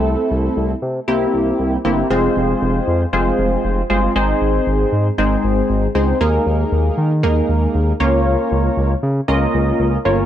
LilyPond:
<<
  \new Staff \with { instrumentName = "Analog polysynth" } { \time 4/4 \key c \lydian \tempo 4 = 117 <a c' e' a'>4. r8 <bes c' e' g'>4. <bes c' e' g'>8 | \key f \minor <aes c' f' aes' c''>2 <aes c' f' aes' c''>4. <aes c' f' aes' c''>8 | <aes c' ees' aes' c''>2 <aes c' ees' aes' c''>4. <aes c' ees' aes' c''>8 | <aes bes ees' aes' bes'>2 <aes bes ees' aes' bes'>4. <bes des' f' bes' des''>8~ |
<bes des' f' bes' des''>4. r8 <bes des' f' bes' ees''>4. <bes des' f' bes' des''>8 | }
  \new Staff \with { instrumentName = "Analog synth bass" } { \clef bass \time 4/4 \key c \lydian c,8 c,8 c,8 c8 c,8 c,8 c,8 g,,8 | \key f \minor f,,8 f,,8 f,,8 f,8 f,,8 f,,8 f,,8 g,,8 | aes,,8 aes,,8 aes,,8 aes,8 aes,,8 aes,,8 aes,,8 des,8 | ees,8 ees,8 ees,8 ees8 ees,8 ees,8 ees,8 des,8~ |
des,8 des,8 des,8 des8 des,8 des,8 des,8 g,,8 | }
>>